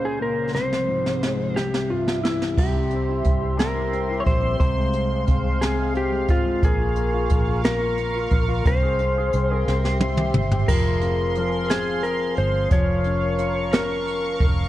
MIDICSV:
0, 0, Header, 1, 6, 480
1, 0, Start_track
1, 0, Key_signature, -4, "minor"
1, 0, Tempo, 675676
1, 393, Time_signature, 6, 3, 24, 8
1, 10433, End_track
2, 0, Start_track
2, 0, Title_t, "Analog synth pad"
2, 0, Program_c, 0, 89
2, 0, Note_on_c, 0, 49, 68
2, 0, Note_on_c, 0, 58, 63
2, 0, Note_on_c, 0, 72, 74
2, 363, Note_off_c, 0, 49, 0
2, 377, Note_off_c, 0, 58, 0
2, 378, Note_off_c, 0, 72, 0
2, 393, Note_on_c, 0, 53, 61
2, 394, Note_on_c, 0, 56, 54
2, 396, Note_on_c, 0, 48, 71
2, 397, Note_on_c, 0, 60, 73
2, 1105, Note_off_c, 0, 53, 0
2, 1105, Note_on_c, 0, 55, 67
2, 1106, Note_off_c, 0, 56, 0
2, 1108, Note_off_c, 0, 60, 0
2, 1109, Note_on_c, 0, 76, 84
2, 1815, Note_off_c, 0, 76, 0
2, 1819, Note_off_c, 0, 48, 0
2, 1821, Note_off_c, 0, 55, 0
2, 1824, Note_on_c, 0, 76, 63
2, 1826, Note_on_c, 0, 67, 69
2, 1826, Note_on_c, 0, 84, 75
2, 3253, Note_off_c, 0, 76, 0
2, 3254, Note_off_c, 0, 67, 0
2, 3275, Note_on_c, 0, 77, 65
2, 3279, Note_on_c, 0, 56, 64
2, 4680, Note_off_c, 0, 84, 0
2, 4698, Note_off_c, 0, 77, 0
2, 4700, Note_off_c, 0, 56, 0
2, 4716, Note_on_c, 0, 70, 80
2, 4721, Note_on_c, 0, 77, 71
2, 4724, Note_on_c, 0, 85, 76
2, 6139, Note_off_c, 0, 70, 0
2, 6143, Note_off_c, 0, 85, 0
2, 6147, Note_on_c, 0, 68, 75
2, 6150, Note_on_c, 0, 84, 89
2, 6854, Note_off_c, 0, 77, 0
2, 6861, Note_off_c, 0, 68, 0
2, 6878, Note_on_c, 0, 76, 72
2, 6880, Note_on_c, 0, 67, 82
2, 7575, Note_off_c, 0, 84, 0
2, 7587, Note_off_c, 0, 76, 0
2, 7588, Note_off_c, 0, 67, 0
2, 7601, Note_on_c, 0, 68, 69
2, 7602, Note_on_c, 0, 84, 81
2, 7604, Note_on_c, 0, 77, 75
2, 9021, Note_off_c, 0, 68, 0
2, 9022, Note_off_c, 0, 84, 0
2, 9023, Note_off_c, 0, 77, 0
2, 9041, Note_on_c, 0, 77, 68
2, 9043, Note_on_c, 0, 70, 68
2, 9048, Note_on_c, 0, 85, 84
2, 10433, Note_off_c, 0, 70, 0
2, 10433, Note_off_c, 0, 77, 0
2, 10433, Note_off_c, 0, 85, 0
2, 10433, End_track
3, 0, Start_track
3, 0, Title_t, "Electric slide guitar"
3, 0, Program_c, 1, 29
3, 35, Note_on_c, 1, 68, 75
3, 156, Note_off_c, 1, 68, 0
3, 159, Note_on_c, 1, 70, 78
3, 386, Note_off_c, 1, 70, 0
3, 389, Note_on_c, 1, 72, 80
3, 1111, Note_on_c, 1, 67, 68
3, 1352, Note_on_c, 1, 65, 68
3, 1359, Note_off_c, 1, 67, 0
3, 1562, Note_off_c, 1, 72, 0
3, 1585, Note_off_c, 1, 65, 0
3, 1588, Note_on_c, 1, 64, 64
3, 1837, Note_off_c, 1, 64, 0
3, 1837, Note_on_c, 1, 67, 79
3, 2526, Note_off_c, 1, 67, 0
3, 2553, Note_on_c, 1, 70, 77
3, 2985, Note_on_c, 1, 73, 65
3, 2996, Note_off_c, 1, 70, 0
3, 3029, Note_off_c, 1, 73, 0
3, 3032, Note_on_c, 1, 72, 87
3, 3258, Note_off_c, 1, 72, 0
3, 3266, Note_on_c, 1, 72, 81
3, 3988, Note_on_c, 1, 68, 70
3, 4010, Note_off_c, 1, 72, 0
3, 4237, Note_off_c, 1, 68, 0
3, 4241, Note_on_c, 1, 67, 77
3, 4477, Note_on_c, 1, 65, 76
3, 4483, Note_off_c, 1, 67, 0
3, 4721, Note_off_c, 1, 65, 0
3, 4721, Note_on_c, 1, 68, 86
3, 5430, Note_off_c, 1, 68, 0
3, 5433, Note_on_c, 1, 70, 78
3, 6158, Note_off_c, 1, 70, 0
3, 6161, Note_on_c, 1, 72, 81
3, 6786, Note_off_c, 1, 72, 0
3, 6786, Note_on_c, 1, 70, 81
3, 7087, Note_off_c, 1, 70, 0
3, 7589, Note_on_c, 1, 70, 93
3, 8313, Note_on_c, 1, 68, 79
3, 8331, Note_off_c, 1, 70, 0
3, 8547, Note_on_c, 1, 70, 80
3, 8559, Note_off_c, 1, 68, 0
3, 8792, Note_off_c, 1, 70, 0
3, 8795, Note_on_c, 1, 72, 93
3, 9035, Note_off_c, 1, 72, 0
3, 9038, Note_on_c, 1, 73, 98
3, 9755, Note_on_c, 1, 70, 88
3, 9776, Note_off_c, 1, 73, 0
3, 10265, Note_off_c, 1, 70, 0
3, 10433, End_track
4, 0, Start_track
4, 0, Title_t, "Grand piano"
4, 0, Program_c, 2, 0
4, 0, Control_c, 2, 64, 127
4, 0, Note_on_c, 2, 37, 60
4, 0, Note_on_c, 2, 46, 44
4, 0, Note_on_c, 2, 49, 49
4, 0, Note_on_c, 2, 61, 45
4, 137, Note_off_c, 2, 46, 0
4, 148, Note_on_c, 2, 46, 45
4, 363, Note_off_c, 2, 37, 0
4, 367, Note_off_c, 2, 61, 0
4, 378, Note_off_c, 2, 49, 0
4, 383, Note_off_c, 2, 46, 0
4, 387, Note_on_c, 2, 36, 60
4, 401, Control_c, 2, 64, 0
4, 534, Control_c, 2, 64, 127
4, 626, Note_on_c, 2, 44, 43
4, 869, Note_on_c, 2, 56, 40
4, 1088, Note_off_c, 2, 36, 0
4, 1095, Note_off_c, 2, 44, 0
4, 1104, Note_off_c, 2, 56, 0
4, 1113, Note_on_c, 2, 36, 53
4, 1122, Control_c, 2, 64, 0
4, 1243, Control_c, 2, 64, 127
4, 1358, Note_on_c, 2, 43, 45
4, 1597, Note_on_c, 2, 52, 42
4, 1811, Note_off_c, 2, 36, 0
4, 1820, Note_off_c, 2, 43, 0
4, 1828, Note_off_c, 2, 52, 0
4, 1834, Note_on_c, 2, 48, 60
4, 1842, Control_c, 2, 64, 0
4, 1952, Note_on_c, 2, 55, 42
4, 1985, Control_c, 2, 64, 127
4, 2083, Note_on_c, 2, 60, 47
4, 2194, Note_on_c, 2, 64, 49
4, 2307, Note_off_c, 2, 55, 0
4, 2318, Note_on_c, 2, 55, 41
4, 2423, Note_off_c, 2, 60, 0
4, 2434, Note_on_c, 2, 60, 45
4, 2528, Note_off_c, 2, 55, 0
4, 2538, Note_on_c, 2, 55, 61
4, 2652, Note_off_c, 2, 64, 0
4, 2662, Note_on_c, 2, 64, 42
4, 2776, Note_off_c, 2, 60, 0
4, 2786, Note_on_c, 2, 60, 48
4, 2894, Note_off_c, 2, 64, 0
4, 2905, Note_on_c, 2, 64, 47
4, 3012, Note_off_c, 2, 55, 0
4, 3023, Note_on_c, 2, 55, 41
4, 3130, Note_off_c, 2, 60, 0
4, 3140, Note_on_c, 2, 60, 49
4, 3244, Note_off_c, 2, 48, 0
4, 3257, Note_off_c, 2, 64, 0
4, 3260, Note_off_c, 2, 55, 0
4, 3262, Note_off_c, 2, 60, 0
4, 3266, Note_on_c, 2, 48, 65
4, 3280, Control_c, 2, 64, 0
4, 3391, Note_on_c, 2, 56, 45
4, 3410, Control_c, 2, 64, 127
4, 3513, Note_on_c, 2, 60, 49
4, 3619, Note_off_c, 2, 56, 0
4, 3630, Note_on_c, 2, 56, 50
4, 3736, Note_off_c, 2, 60, 0
4, 3746, Note_on_c, 2, 60, 43
4, 3855, Note_off_c, 2, 56, 0
4, 3866, Note_on_c, 2, 56, 43
4, 3973, Note_off_c, 2, 48, 0
4, 3983, Note_on_c, 2, 48, 56
4, 4096, Note_off_c, 2, 56, 0
4, 4107, Note_on_c, 2, 56, 45
4, 4212, Note_off_c, 2, 60, 0
4, 4222, Note_on_c, 2, 60, 50
4, 4336, Note_off_c, 2, 56, 0
4, 4347, Note_on_c, 2, 56, 53
4, 4458, Note_off_c, 2, 60, 0
4, 4468, Note_on_c, 2, 60, 45
4, 4575, Note_off_c, 2, 56, 0
4, 4586, Note_on_c, 2, 56, 50
4, 4685, Note_off_c, 2, 48, 0
4, 4702, Note_off_c, 2, 60, 0
4, 4705, Note_off_c, 2, 56, 0
4, 4705, Note_on_c, 2, 58, 60
4, 4720, Control_c, 2, 64, 0
4, 4828, Note_on_c, 2, 65, 46
4, 4855, Control_c, 2, 64, 127
4, 4937, Note_off_c, 2, 58, 0
4, 4948, Note_on_c, 2, 58, 53
4, 5062, Note_off_c, 2, 65, 0
4, 5072, Note_on_c, 2, 65, 55
4, 5188, Note_off_c, 2, 58, 0
4, 5199, Note_on_c, 2, 58, 44
4, 5298, Note_off_c, 2, 65, 0
4, 5309, Note_on_c, 2, 65, 48
4, 5425, Note_off_c, 2, 58, 0
4, 5435, Note_on_c, 2, 58, 59
4, 5544, Note_off_c, 2, 65, 0
4, 5554, Note_on_c, 2, 65, 46
4, 5666, Note_off_c, 2, 58, 0
4, 5781, Note_off_c, 2, 65, 0
4, 5792, Note_on_c, 2, 65, 52
4, 5915, Note_on_c, 2, 58, 42
4, 6015, Note_off_c, 2, 65, 0
4, 6026, Note_on_c, 2, 65, 54
4, 6145, Note_off_c, 2, 65, 0
4, 6146, Note_off_c, 2, 58, 0
4, 6149, Note_on_c, 2, 60, 65
4, 6161, Control_c, 2, 64, 0
4, 6272, Note_on_c, 2, 68, 50
4, 6292, Control_c, 2, 64, 127
4, 6382, Note_off_c, 2, 60, 0
4, 6393, Note_on_c, 2, 60, 46
4, 6509, Note_off_c, 2, 68, 0
4, 6520, Note_on_c, 2, 68, 53
4, 6630, Note_off_c, 2, 60, 0
4, 6641, Note_on_c, 2, 60, 45
4, 6747, Note_off_c, 2, 68, 0
4, 6758, Note_on_c, 2, 68, 53
4, 6866, Note_off_c, 2, 60, 0
4, 6871, Note_off_c, 2, 68, 0
4, 6877, Note_on_c, 2, 60, 61
4, 6881, Control_c, 2, 64, 0
4, 6993, Note_on_c, 2, 67, 51
4, 7022, Control_c, 2, 64, 127
4, 7105, Note_off_c, 2, 60, 0
4, 7116, Note_on_c, 2, 60, 52
4, 7228, Note_off_c, 2, 67, 0
4, 7239, Note_on_c, 2, 67, 52
4, 7339, Note_off_c, 2, 60, 0
4, 7349, Note_on_c, 2, 60, 45
4, 7465, Note_off_c, 2, 67, 0
4, 7475, Note_on_c, 2, 67, 51
4, 7583, Note_off_c, 2, 60, 0
4, 7589, Note_off_c, 2, 67, 0
4, 7593, Note_on_c, 2, 53, 67
4, 7599, Control_c, 2, 64, 0
4, 7711, Control_c, 2, 64, 127
4, 7830, Note_on_c, 2, 60, 45
4, 8069, Note_off_c, 2, 53, 0
4, 8079, Note_on_c, 2, 53, 52
4, 8301, Note_off_c, 2, 60, 0
4, 8312, Note_on_c, 2, 60, 59
4, 9007, Note_off_c, 2, 53, 0
4, 9010, Note_off_c, 2, 60, 0
4, 9036, Note_on_c, 2, 53, 72
4, 9041, Control_c, 2, 64, 0
4, 9168, Control_c, 2, 64, 127
4, 9272, Note_on_c, 2, 61, 49
4, 9514, Note_on_c, 2, 65, 50
4, 9745, Note_off_c, 2, 61, 0
4, 9755, Note_on_c, 2, 61, 54
4, 10433, Note_off_c, 2, 53, 0
4, 10433, Note_off_c, 2, 61, 0
4, 10433, Note_off_c, 2, 65, 0
4, 10433, End_track
5, 0, Start_track
5, 0, Title_t, "Fingered electric bass"
5, 0, Program_c, 3, 33
5, 1831, Note_on_c, 3, 36, 86
5, 2283, Note_off_c, 3, 36, 0
5, 2311, Note_on_c, 3, 36, 75
5, 3003, Note_off_c, 3, 36, 0
5, 3030, Note_on_c, 3, 34, 80
5, 3256, Note_off_c, 3, 34, 0
5, 3269, Note_on_c, 3, 36, 88
5, 3722, Note_off_c, 3, 36, 0
5, 3753, Note_on_c, 3, 36, 77
5, 4465, Note_off_c, 3, 36, 0
5, 4465, Note_on_c, 3, 32, 78
5, 4694, Note_off_c, 3, 32, 0
5, 4710, Note_on_c, 3, 34, 101
5, 5162, Note_off_c, 3, 34, 0
5, 5189, Note_on_c, 3, 34, 79
5, 5881, Note_off_c, 3, 34, 0
5, 5906, Note_on_c, 3, 34, 70
5, 6134, Note_off_c, 3, 34, 0
5, 6151, Note_on_c, 3, 36, 95
5, 6602, Note_off_c, 3, 36, 0
5, 6633, Note_on_c, 3, 36, 102
5, 6857, Note_off_c, 3, 36, 0
5, 6874, Note_on_c, 3, 36, 83
5, 7324, Note_off_c, 3, 36, 0
5, 7354, Note_on_c, 3, 31, 78
5, 7578, Note_off_c, 3, 31, 0
5, 7589, Note_on_c, 3, 29, 90
5, 8761, Note_off_c, 3, 29, 0
5, 8794, Note_on_c, 3, 31, 74
5, 9018, Note_off_c, 3, 31, 0
5, 9032, Note_on_c, 3, 29, 101
5, 10203, Note_off_c, 3, 29, 0
5, 10232, Note_on_c, 3, 29, 74
5, 10433, Note_off_c, 3, 29, 0
5, 10433, End_track
6, 0, Start_track
6, 0, Title_t, "Drums"
6, 396, Note_on_c, 9, 38, 44
6, 467, Note_off_c, 9, 38, 0
6, 516, Note_on_c, 9, 38, 44
6, 587, Note_off_c, 9, 38, 0
6, 754, Note_on_c, 9, 38, 42
6, 825, Note_off_c, 9, 38, 0
6, 873, Note_on_c, 9, 38, 63
6, 944, Note_off_c, 9, 38, 0
6, 1116, Note_on_c, 9, 38, 66
6, 1187, Note_off_c, 9, 38, 0
6, 1236, Note_on_c, 9, 38, 62
6, 1307, Note_off_c, 9, 38, 0
6, 1476, Note_on_c, 9, 38, 60
6, 1547, Note_off_c, 9, 38, 0
6, 1597, Note_on_c, 9, 38, 89
6, 1668, Note_off_c, 9, 38, 0
6, 1717, Note_on_c, 9, 38, 76
6, 1788, Note_off_c, 9, 38, 0
6, 1830, Note_on_c, 9, 36, 102
6, 1830, Note_on_c, 9, 49, 76
6, 1901, Note_off_c, 9, 36, 0
6, 1901, Note_off_c, 9, 49, 0
6, 2064, Note_on_c, 9, 42, 49
6, 2135, Note_off_c, 9, 42, 0
6, 2304, Note_on_c, 9, 42, 66
6, 2312, Note_on_c, 9, 36, 72
6, 2375, Note_off_c, 9, 42, 0
6, 2383, Note_off_c, 9, 36, 0
6, 2550, Note_on_c, 9, 42, 74
6, 2558, Note_on_c, 9, 38, 80
6, 2621, Note_off_c, 9, 42, 0
6, 2629, Note_off_c, 9, 38, 0
6, 2792, Note_on_c, 9, 42, 48
6, 2863, Note_off_c, 9, 42, 0
6, 3029, Note_on_c, 9, 42, 51
6, 3030, Note_on_c, 9, 36, 82
6, 3100, Note_off_c, 9, 42, 0
6, 3101, Note_off_c, 9, 36, 0
6, 3269, Note_on_c, 9, 36, 98
6, 3270, Note_on_c, 9, 42, 83
6, 3340, Note_off_c, 9, 36, 0
6, 3341, Note_off_c, 9, 42, 0
6, 3504, Note_on_c, 9, 42, 52
6, 3575, Note_off_c, 9, 42, 0
6, 3746, Note_on_c, 9, 42, 70
6, 3751, Note_on_c, 9, 36, 77
6, 3817, Note_off_c, 9, 42, 0
6, 3823, Note_off_c, 9, 36, 0
6, 3991, Note_on_c, 9, 42, 84
6, 3999, Note_on_c, 9, 38, 88
6, 4062, Note_off_c, 9, 42, 0
6, 4070, Note_off_c, 9, 38, 0
6, 4228, Note_on_c, 9, 42, 46
6, 4299, Note_off_c, 9, 42, 0
6, 4464, Note_on_c, 9, 42, 58
6, 4467, Note_on_c, 9, 36, 80
6, 4535, Note_off_c, 9, 42, 0
6, 4538, Note_off_c, 9, 36, 0
6, 4709, Note_on_c, 9, 36, 96
6, 4709, Note_on_c, 9, 42, 85
6, 4780, Note_off_c, 9, 36, 0
6, 4780, Note_off_c, 9, 42, 0
6, 4943, Note_on_c, 9, 42, 54
6, 5014, Note_off_c, 9, 42, 0
6, 5183, Note_on_c, 9, 42, 80
6, 5190, Note_on_c, 9, 36, 81
6, 5254, Note_off_c, 9, 42, 0
6, 5262, Note_off_c, 9, 36, 0
6, 5426, Note_on_c, 9, 42, 76
6, 5434, Note_on_c, 9, 38, 81
6, 5497, Note_off_c, 9, 42, 0
6, 5505, Note_off_c, 9, 38, 0
6, 5666, Note_on_c, 9, 42, 49
6, 5737, Note_off_c, 9, 42, 0
6, 5900, Note_on_c, 9, 42, 53
6, 5906, Note_on_c, 9, 36, 82
6, 5971, Note_off_c, 9, 42, 0
6, 5977, Note_off_c, 9, 36, 0
6, 6149, Note_on_c, 9, 36, 102
6, 6149, Note_on_c, 9, 42, 82
6, 6220, Note_off_c, 9, 36, 0
6, 6220, Note_off_c, 9, 42, 0
6, 6384, Note_on_c, 9, 42, 57
6, 6455, Note_off_c, 9, 42, 0
6, 6627, Note_on_c, 9, 42, 76
6, 6698, Note_off_c, 9, 42, 0
6, 6877, Note_on_c, 9, 38, 52
6, 6948, Note_off_c, 9, 38, 0
6, 6997, Note_on_c, 9, 38, 49
6, 7068, Note_off_c, 9, 38, 0
6, 7108, Note_on_c, 9, 48, 72
6, 7179, Note_off_c, 9, 48, 0
6, 7226, Note_on_c, 9, 47, 68
6, 7297, Note_off_c, 9, 47, 0
6, 7346, Note_on_c, 9, 45, 88
6, 7417, Note_off_c, 9, 45, 0
6, 7469, Note_on_c, 9, 43, 83
6, 7541, Note_off_c, 9, 43, 0
6, 7589, Note_on_c, 9, 49, 88
6, 7590, Note_on_c, 9, 36, 108
6, 7660, Note_off_c, 9, 49, 0
6, 7661, Note_off_c, 9, 36, 0
6, 7823, Note_on_c, 9, 42, 59
6, 7894, Note_off_c, 9, 42, 0
6, 8065, Note_on_c, 9, 42, 56
6, 8136, Note_off_c, 9, 42, 0
6, 8309, Note_on_c, 9, 42, 86
6, 8317, Note_on_c, 9, 38, 86
6, 8380, Note_off_c, 9, 42, 0
6, 8388, Note_off_c, 9, 38, 0
6, 8551, Note_on_c, 9, 42, 54
6, 8622, Note_off_c, 9, 42, 0
6, 8786, Note_on_c, 9, 42, 43
6, 8857, Note_off_c, 9, 42, 0
6, 9028, Note_on_c, 9, 42, 90
6, 9031, Note_on_c, 9, 36, 104
6, 9099, Note_off_c, 9, 42, 0
6, 9102, Note_off_c, 9, 36, 0
6, 9264, Note_on_c, 9, 42, 54
6, 9335, Note_off_c, 9, 42, 0
6, 9508, Note_on_c, 9, 42, 58
6, 9579, Note_off_c, 9, 42, 0
6, 9751, Note_on_c, 9, 42, 91
6, 9759, Note_on_c, 9, 38, 85
6, 9822, Note_off_c, 9, 42, 0
6, 9830, Note_off_c, 9, 38, 0
6, 9997, Note_on_c, 9, 42, 56
6, 10068, Note_off_c, 9, 42, 0
6, 10230, Note_on_c, 9, 42, 43
6, 10233, Note_on_c, 9, 36, 94
6, 10301, Note_off_c, 9, 42, 0
6, 10304, Note_off_c, 9, 36, 0
6, 10433, End_track
0, 0, End_of_file